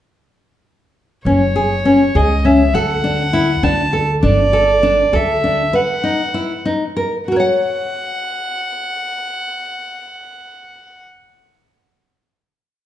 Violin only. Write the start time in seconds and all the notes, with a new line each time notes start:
1.26 C#5
2.16 D#5
2.45 E5
2.74 F#5
3.64 A5
4.23 D5
5.16 E5
5.76 F#5
7.28 F#5